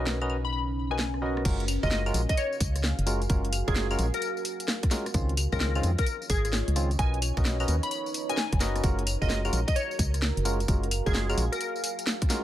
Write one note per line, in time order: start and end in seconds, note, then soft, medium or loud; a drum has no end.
0.00 1.44 B1 medium
0.00 0.18 C#4 medium
0.00 2.96 C#4 medium
0.00 0.25 D#4 medium
0.00 0.18 F#4 medium
0.00 0.18 A#4 medium
0.00 0.18 B4 medium
0.00 0.36 C#5 medium
0.00 0.18 D#5 medium
0.07 1.45 B4 medium
0.07 snare loud
0.19 0.36 C#4 medium
0.19 0.36 F#4 medium
0.19 0.36 A#4 medium
0.19 0.36 B4 medium
0.19 2.11 D#5 medium
0.19 0.36 D#5 loud
0.19 claves medium
0.27 2.51 A#5 medium
0.27 claves medium
0.45 0.50 B5 medium
0.53 0.62 B5 medium
0.91 0.98 C#4 medium
0.91 0.98 F#4 medium
0.91 0.98 A#4 medium
0.91 0.98 B4 medium
0.91 0.98 D#5 medium
0.91 1.22 G#5 medium
0.99 snare loud
1.14 cross-stick medium
1.22 1.43 C#4 medium
1.22 1.43 F#4 medium
1.22 1.43 A#4 medium
1.22 1.43 B4 medium
1.22 1.43 D#5 loud
1.37 cross-stick medium
1.45 1.78 F#1 loud
1.45 1.64 G#3 medium
1.45 1.64 C#4 medium
1.45 1.64 F4 medium
1.45 1.64 F#4 medium
1.45 5.14 F#4 medium
1.45 1.64 A#4 loud
1.45 kick loud
1.45 closed hi-hat medium
1.45 tambourine soft
1.45 crash loud
1.60 closed hi-hat soft
1.68 open hi-hat loud
1.68 tambourine medium
1.68 claves medium
1.83 2.12 F#1 loud
1.83 2.03 G#3 medium
1.83 2.03 C#4 medium
1.83 2.03 F4 medium
1.83 2.03 F#4 medium
1.83 2.03 A#4 loud
1.83 1.88 D#5 medium
1.83 kick medium
1.83 cross-stick soft
1.83 tambourine soft
1.91 2.01 D#5 medium
1.91 snare loud
1.91 tambourine soft
1.96 5.80 A#4 medium
2.06 2.21 G#3 loud
2.06 2.21 C#4 medium
2.06 2.21 F4 medium
2.06 2.21 F#4 medium
2.06 2.21 A#4 loud
2.06 5.90 F5 medium
2.06 tambourine soft
2.06 claves medium
2.10 5.90 G#5 loud
2.14 2.26 A#1 loud
2.14 open hi-hat medium
2.14 tambourine medium
2.29 2.36 D#5 medium
2.29 kick loud
2.29 closed hi-hat medium
2.29 tambourine soft
2.37 2.59 C#5 medium
2.37 closed hi-hat medium
2.37 tambourine soft
2.53 tambourine soft
2.60 2.94 C#2 medium
2.60 kick loud
2.60 open hi-hat loud
2.60 tambourine medium
2.76 cross-stick medium
2.76 closed hi-hat medium
2.76 tambourine soft
2.84 snare loud
2.84 tambourine soft
2.99 3.27 F#1 medium
2.99 closed hi-hat medium
3.06 3.20 G#3 medium
3.06 3.20 C#4 medium
3.06 3.20 F4 medium
3.06 3.20 F#4 medium
3.06 3.20 A#4 loud
3.06 open hi-hat loud
3.06 tambourine medium
3.22 closed hi-hat soft
3.22 tambourine soft
3.30 3.63 F#1 loud
3.30 3.48 G#3 medium
3.30 3.48 C#4 medium
3.30 3.48 F4 medium
3.30 3.48 F#4 medium
3.30 3.48 A#4 loud
3.30 kick loud
3.30 closed hi-hat medium
3.30 tambourine soft
3.45 closed hi-hat soft
3.53 open hi-hat loud
3.53 tambourine medium
3.53 claves medium
3.68 3.96 F#1 loud
3.68 3.87 G#3 medium
3.68 3.87 C#4 medium
3.68 3.87 F4 medium
3.68 3.87 F#4 medium
3.68 3.87 G#4 loud
3.68 3.87 A#4 loud
3.68 kick loud
3.68 cross-stick soft
3.68 tambourine soft
3.76 snare loud
3.76 tambourine soft
3.91 4.05 G#3 loud
3.91 4.05 C#4 medium
3.91 4.05 F4 medium
3.91 4.05 F#4 medium
3.91 4.05 A#4 loud
3.91 tambourine soft
3.91 claves medium
3.99 4.11 A#1 loud
3.99 open hi-hat medium
3.99 tambourine medium
4.14 4.77 A#4 medium
4.14 closed hi-hat medium
4.14 tambourine soft
4.22 closed hi-hat medium
4.22 tambourine soft
4.37 tambourine soft
4.45 open hi-hat loud
4.45 tambourine medium
4.60 closed hi-hat medium
4.60 tambourine soft
4.68 snare loud
4.68 tambourine soft
4.83 kick loud
4.83 cross-stick medium
4.83 closed hi-hat medium
4.91 5.05 G#3 medium
4.91 5.05 C#4 medium
4.91 5.05 F4 medium
4.91 5.05 F#4 medium
4.91 5.05 A#4 loud
4.91 snare medium
4.91 open hi-hat loud
4.91 tambourine medium
5.06 cross-stick medium
5.06 closed hi-hat soft
5.06 tambourine soft
5.14 5.47 C#2 loud
5.14 5.33 D#3 medium
5.14 5.33 G#3 medium
5.14 5.33 C4 medium
5.14 5.33 C#4 medium
5.14 5.33 F4 loud
5.14 7.74 F4 medium
5.14 kick loud
5.14 closed hi-hat medium
5.14 tambourine soft
5.29 closed hi-hat soft
5.37 open hi-hat loud
5.37 tambourine medium
5.37 claves medium
5.44 10.34 C#5 loud
5.52 5.81 C#2 loud
5.52 5.72 D#3 medium
5.52 5.72 G#3 medium
5.52 5.72 C4 medium
5.52 5.72 C#4 medium
5.52 5.72 F4 loud
5.52 5.58 A#4 medium
5.52 kick medium
5.52 cross-stick soft
5.52 tambourine soft
5.60 5.70 A#4 medium
5.60 6.99 C6 medium
5.60 snare loud
5.60 tambourine soft
5.75 5.90 D#3 loud
5.75 5.90 G#3 medium
5.75 5.90 C4 medium
5.75 5.90 C#4 medium
5.75 5.90 F4 loud
5.75 tambourine soft
5.75 claves medium
5.83 5.95 F2 loud
5.83 7.74 D#5 medium
5.83 open hi-hat medium
5.83 tambourine medium
5.98 6.05 A#4 medium
5.98 kick loud
5.98 closed hi-hat medium
5.98 tambourine soft
6.07 closed hi-hat medium
6.07 tambourine soft
6.22 tambourine soft
6.30 6.63 G#1 medium
6.30 6.96 G#4 loud
6.30 kick loud
6.30 open hi-hat loud
6.30 tambourine medium
6.45 cross-stick medium
6.45 closed hi-hat medium
6.45 tambourine soft
6.53 snare loud
6.53 tambourine soft
6.68 6.96 C#2 medium
6.68 closed hi-hat medium
6.76 6.89 D#3 medium
6.76 6.89 G#3 medium
6.76 6.89 C4 medium
6.76 6.89 C#4 medium
6.76 6.89 F4 loud
6.76 open hi-hat medium
6.76 tambourine medium
6.91 closed hi-hat soft
6.91 tambourine soft
6.99 7.32 B1 loud
6.99 7.17 C#4 medium
6.99 9.69 D#4 medium
6.99 7.17 F#4 medium
6.99 7.17 A#4 medium
6.99 7.17 B4 medium
6.99 7.17 D#5 loud
6.99 7.20 G#5 medium
6.99 kick loud
6.99 closed hi-hat medium
6.99 tambourine soft
7.14 closed hi-hat soft
7.19 8.84 B4 medium
7.19 open hi-hat loud
7.19 tambourine medium
7.19 claves medium
7.37 7.65 B1 loud
7.37 7.57 C#4 medium
7.37 7.57 F#4 medium
7.37 7.57 A#4 medium
7.37 7.57 B4 medium
7.37 7.57 D#5 loud
7.37 kick loud
7.37 cross-stick soft
7.37 tambourine soft
7.45 snare loud
7.45 tambourine soft
7.60 7.75 C#4 medium
7.60 7.75 F#4 medium
7.60 7.75 A#4 medium
7.60 7.75 B4 medium
7.60 7.75 D#5 loud
7.60 tambourine soft
7.60 claves medium
7.68 7.80 D#2 medium
7.68 open hi-hat medium
7.68 tambourine medium
7.81 9.63 A#5 medium
7.81 7.88 B5 medium
7.81 closed hi-hat medium
7.81 tambourine soft
7.91 8.01 B5 medium
7.91 closed hi-hat medium
7.91 tambourine soft
8.06 tambourine soft
8.14 open hi-hat loud
8.14 tambourine medium
8.29 8.37 C#4 medium
8.29 8.37 F#4 medium
8.29 8.37 A#4 medium
8.29 8.37 B4 medium
8.29 8.37 D#5 medium
8.29 8.61 G#5 medium
8.29 closed hi-hat medium
8.29 tambourine soft
8.37 snare loud
8.37 tambourine soft
8.52 8.81 F#1 medium
8.52 kick loud
8.52 cross-stick medium
8.52 closed hi-hat medium
8.60 8.82 C#4 loud
8.60 8.82 F#4 medium
8.60 8.82 A#4 medium
8.60 8.82 B4 medium
8.60 8.82 D#5 loud
8.60 snare medium
8.60 open hi-hat medium
8.60 tambourine medium
8.76 cross-stick medium
8.76 closed hi-hat soft
8.76 tambourine soft
8.84 9.17 F#1 loud
8.84 9.02 G#3 medium
8.84 9.02 C#4 medium
8.84 9.02 F4 medium
8.84 12.44 F#4 medium
8.84 9.02 F#4 medium
8.84 9.02 A#4 medium
8.84 kick loud
8.84 closed hi-hat medium
8.84 tambourine soft
8.99 closed hi-hat soft
9.07 open hi-hat loud
9.07 tambourine medium
9.07 claves medium
9.20 9.50 F#1 loud
9.20 9.41 G#3 medium
9.20 9.41 C#4 medium
9.20 9.41 F4 medium
9.20 9.41 F#4 medium
9.20 12.44 A#4 medium
9.20 9.41 A#4 loud
9.20 9.27 D#5 loud
9.20 kick medium
9.20 cross-stick soft
9.20 tambourine soft
9.30 9.39 D#5 medium
9.30 snare loud
9.30 tambourine soft
9.45 9.59 G#3 medium
9.45 9.59 C#4 medium
9.45 9.59 F4 medium
9.45 9.59 F#4 medium
9.45 9.59 A#4 loud
9.45 tambourine soft
9.45 claves medium
9.53 9.65 A#1 medium
9.53 open hi-hat medium
9.53 tambourine medium
9.68 9.74 D#5 medium
9.68 kick loud
9.68 closed hi-hat medium
9.68 tambourine soft
9.76 9.97 C#5 medium
9.76 closed hi-hat medium
9.76 tambourine soft
9.88 12.44 F5 loud
9.88 tambourine soft
9.99 10.32 C#2 medium
9.99 kick loud
9.99 open hi-hat loud
9.99 tambourine medium
10.14 cross-stick medium
10.14 closed hi-hat medium
10.14 tambourine soft
10.20 12.44 G#5 medium
10.20 snare loud
10.20 tambourine soft
10.37 10.66 F#1 medium
10.37 closed hi-hat medium
10.45 10.59 G#3 loud
10.45 10.59 C#4 medium
10.45 10.59 F4 medium
10.45 10.59 F#4 medium
10.45 10.59 A#4 loud
10.45 open hi-hat medium
10.45 tambourine medium
10.60 closed hi-hat soft
10.60 tambourine soft
10.68 11.01 F#1 loud
10.68 10.87 G#3 medium
10.68 10.87 C#4 medium
10.68 10.87 F4 medium
10.68 10.87 F#4 medium
10.68 10.87 A#4 medium
10.68 kick loud
10.68 closed hi-hat medium
10.68 tambourine soft
10.83 closed hi-hat soft
10.91 open hi-hat loud
10.91 tambourine medium
10.91 claves medium
11.06 11.35 F#1 loud
11.06 11.26 G#3 loud
11.06 11.26 C#4 medium
11.06 11.26 F4 medium
11.06 11.26 F#4 medium
11.06 11.26 G#4 loud
11.06 11.26 A#4 loud
11.06 kick loud
11.06 cross-stick soft
11.06 tambourine soft
11.14 snare loud
11.14 tambourine soft
11.29 11.44 G#3 loud
11.29 11.44 C#4 medium
11.29 11.44 F4 medium
11.29 11.44 F#4 medium
11.29 11.44 A#4 loud
11.29 tambourine soft
11.29 claves medium
11.38 11.49 A#1 loud
11.38 open hi-hat medium
11.38 tambourine medium
11.52 12.16 A#4 medium
11.52 closed hi-hat medium
11.52 tambourine soft
11.61 closed hi-hat medium
11.61 tambourine soft
11.76 tambourine soft
11.84 open hi-hat loud
11.84 tambourine medium
11.99 closed hi-hat medium
11.99 tambourine soft
12.07 snare loud
12.07 tambourine soft
12.22 kick loud
12.22 cross-stick soft
12.22 closed hi-hat medium
12.30 12.43 G#3 medium
12.30 12.43 C#4 medium
12.30 12.43 F4 medium
12.30 12.43 F#4 medium
12.30 12.43 A#4 loud
12.30 snare medium
12.30 open hi-hat medium
12.30 tambourine medium